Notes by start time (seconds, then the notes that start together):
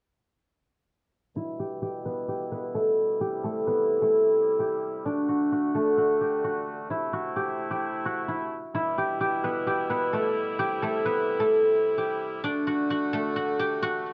1.36 B2 G3 E4 E5
1.59 G4 G5
1.82 G4 G5
2.05 B3 B4
2.28 G4 G5
2.52 B3 B4
2.75 A3 A4
3.21 C3 E4 G4 G5
3.44 A3 A4
3.67 B3 B4
4.02 A3 A4
4.59 G4 G5
5.05 D3 A3 D4 F#4 D5
5.29 F#4 F#5
5.52 F#4 F#5
5.75 A3 A4
5.98 F#4 F#5
6.21 G4 G5
6.44 F#4 F#5
6.90 C3 A3 E4 E5
7.13 F#4 F#5
7.36 G4 G5
7.71 G4 G5
8.05 F#4 F#5
8.28 E4 E5
8.75 B2 G3 E4 E5
8.98 G4 G5
9.21 G4 G5
9.44 B3 B4
9.67 G4 G5
9.90 B3 B4
10.13 A3 A4
10.59 C3 G4 G5
10.82 A3 A4
11.05 B3 B4
11.40 A3 A4
11.98 G4 G5
12.44 D3 A3 D4 F#4 D5
12.67 F#4 F#5
12.90 F#4 F#5
13.13 A3 A4
13.36 F#4 F#5
13.59 G4 G5
13.82 F#4 F#5